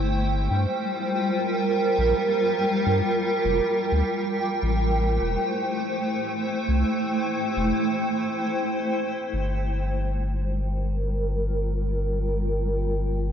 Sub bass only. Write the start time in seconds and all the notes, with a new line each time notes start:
Already playing: G1
0.51 G2
1.98 A#1
2.86 G2
3.45 F1
3.92 D2
4.63 A1
5.22 E1
6.68 C2
7.57 E1
9.33 G1